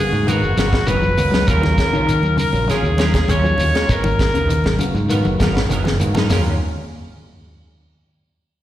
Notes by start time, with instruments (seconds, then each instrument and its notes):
Already playing: clean electric guitar C#3, tonewheel organ A#3 B3 F#4
0.00 alto saxophone G#4
0.13 fingered electric bass G#2, muted clean electric guitar stroke, high conga, shekere
0.26 clean electric guitar D#3 F#3 B3 D#4 A#4, tonewheel organ A#3 B3 F#4, alto saxophone F#4, closed hi-hat, high conga, shekere
0.42 fingered electric bass F#1, muted clean electric guitar stroke, shekere
0.57 fingered electric bass G#1, clean electric guitar F#3 B3 A#4, muted clean electric guitar stroke, snare, closed hi-hat, high conga, shekere
0.72 kick, snare, shekere
0.87 fingered electric bass F#1, clean electric guitar D#3 F#3 B3 D#4 A#4, alto saxophone B4, closed hi-hat, high conga, shekere
1.02 clean electric guitar F3, muted clean electric guitar stroke, shekere
1.17 fingered electric bass C#2, tonewheel organ A#3 B3 F#4, muted clean electric guitar stroke, open hi-hat, low conga, shekere
1.31 clean electric guitar F#3 B3 D#4 A#4, snare, high conga, shekere
1.46 fingered electric bass D#2, tonewheel organ F#3 C#4 F4, clean electric guitar F#3 C#4 F4 A#4, alto saxophone A#4, kick, closed hi-hat, shekere
1.62 clean electric guitar D#3, muted clean electric guitar stroke, snare, high conga, low conga, shekere
1.78 muted clean electric guitar stroke, kick, snare, closed hi-hat, shekere
1.92 clean electric guitar C#3 C#4 F4 A#4, fingered electric bass D#3, shekere
2.07 clean electric guitar D#3, closed hi-hat, high conga, shekere
2.22 fingered electric bass D#2, muted clean electric guitar stroke, high conga, shekere
2.37 clean electric guitar C#3, alto saxophone A#4, muted clean electric guitar stroke, open hi-hat, low conga, shekere
2.52 fingered electric bass A#1, tonewheel organ F#3 C#4 F4, muted clean electric guitar stroke, high conga, shekere
2.68 clean electric guitar D#3 F#3 C#4 F4 A#4, alto saxophone G#4, snare, closed hi-hat, high conga, shekere
2.83 fingered electric bass D#2, muted clean electric guitar stroke, shekere
2.98 clean electric guitar F#3 C#4 F4 A#4, snare, closed hi-hat, high conga, shekere
3.14 kick, snare, closed hi-hat, shekere
3.28 fingered electric bass D#2, clean electric guitar D#3 F#3 C#4 F4 A#4, alto saxophone C#5, closed hi-hat, high conga, shekere
3.43 clean electric guitar F3, tonewheel organ F#3 C#4 F4, muted clean electric guitar stroke, shekere
3.58 fingered electric bass D#2, muted clean electric guitar stroke, open hi-hat, low conga, shekere
3.75 clean electric guitar G#3 C#4 F4 A#4, snare, closed hi-hat, shekere
3.89 fingered electric bass G#1, clean electric guitar F#3 B3 D#4 A#4, alto saxophone A#4, kick, closed hi-hat, shekere
4.04 clean electric guitar D#3, muted clean electric guitar stroke, high conga, low conga, shekere
4.19 muted clean electric guitar stroke, kick, snare, closed hi-hat, shekere
4.34 fingered electric bass D#2, clean electric guitar C#3 B3 D#4 A#4, closed hi-hat, shekere
4.49 clean electric guitar D#3, closed hi-hat, high conga, shekere
4.64 fingered electric bass G#1, muted clean electric guitar stroke, snare, high conga, shekere
4.79 clean electric guitar C#3, tonewheel organ A#3 B3 F#4, muted clean electric guitar stroke, closed hi-hat, low conga, shekere
4.95 fingered electric bass G#2, muted clean electric guitar stroke, high conga, shekere
5.09 clean electric guitar D#3 F#3 B3 D#4 A#4, tonewheel organ A#3 B3 F#4, closed hi-hat, high conga, shekere
5.25 fingered electric bass F#1, muted clean electric guitar stroke, high conga, shekere
5.40 fingered electric bass G#1, clean electric guitar F#3 B3 D#4 A#4, kick, snare, closed hi-hat, low conga, shekere
5.55 snare, low conga, shekere
5.69 fingered electric bass F#1, clean electric guitar D#3 F#3 B3 D#4 A#4, closed hi-hat, low conga, shekere
5.84 clean electric guitar F3, muted clean electric guitar stroke, snare, low conga, shekere
5.99 fingered electric bass G#2, tonewheel organ A#3 B3 F#4, muted clean electric guitar stroke, closed hi-hat, low conga, shekere
6.15 clean electric guitar F#3 B3 D#4 A#4, snare, low conga, shekere
6.30 fingered electric bass D#2, clean electric guitar D#3 F#3 C#4 F4 A#4, tonewheel organ F#3 C#4 F4, snare, floor tom, open hi-hat, low conga, shekere